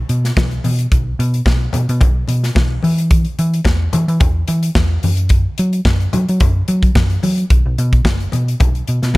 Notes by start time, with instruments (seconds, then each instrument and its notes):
0.09 picked electric bass B2, closed hi-hat
0.25 snare, closed hi-hat
0.37 picked electric bass B1, kick, snare, high conga
0.51 closed hi-hat
0.64 picked electric bass B2, open hi-hat, high conga
0.79 closed hi-hat
0.92 picked electric bass B1, kick, closed hi-hat
1.19 picked electric bass B2, closed hi-hat
1.34 closed hi-hat
1.46 picked electric bass B1, kick, snare, high conga
1.73 picked electric bass B2, closed hi-hat, muted conga, low conga
1.89 picked electric bass B2, closed hi-hat
2.01 picked electric bass B1, kick, closed hi-hat, muted conga, low conga
2.28 picked electric bass B2, closed hi-hat, muted conga
2.44 snare, closed hi-hat
2.55 picked electric bass B1, kick, snare, high conga
2.83 picked electric bass E3, open hi-hat, high conga
2.98 closed hi-hat
3.11 kick, closed hi-hat
3.25 closed hi-hat
3.39 picked electric bass E3, closed hi-hat
3.54 closed hi-hat
3.65 picked electric bass E2, kick, snare, high conga
3.93 picked electric bass E3, closed hi-hat, muted conga, low conga
4.08 picked electric bass E3, closed hi-hat
4.20 picked electric bass E2, kick, closed hi-hat, muted conga, low conga
4.48 picked electric bass E3, closed hi-hat, muted conga
4.63 closed hi-hat
4.75 picked electric bass E2, kick, snare, high conga
5.03 picked electric bass F#2, open hi-hat, high conga
5.17 closed hi-hat
5.29 kick, closed hi-hat
5.58 picked electric bass F#3, closed hi-hat
5.73 closed hi-hat
5.85 picked electric bass F#2, kick, snare, high conga
6.00 closed hi-hat
6.13 picked electric bass F#3, closed hi-hat, muted conga, low conga
6.29 picked electric bass F#3, closed hi-hat
6.40 picked electric bass F#2, kick, closed hi-hat, muted conga, low conga
6.68 picked electric bass F#3, closed hi-hat, muted conga
6.83 kick, closed hi-hat
6.95 picked electric bass F#2, kick, snare, high conga
7.10 closed hi-hat
7.23 picked electric bass F#3, open hi-hat, high conga
7.38 closed hi-hat
7.50 picked electric bass B1, kick, closed hi-hat
7.66 picked electric bass B1
7.78 picked electric bass B2, closed hi-hat
7.93 kick, closed hi-hat
8.05 picked electric bass F#1, kick, snare, high conga
8.20 closed hi-hat
8.32 picked electric bass B2, closed hi-hat, muted conga
8.48 closed hi-hat
8.60 picked electric bass B1, kick, closed hi-hat, muted conga, low conga
8.75 closed hi-hat
8.88 picked electric bass B2, closed hi-hat
9.02 picked electric bass B2, snare, closed hi-hat
9.14 high conga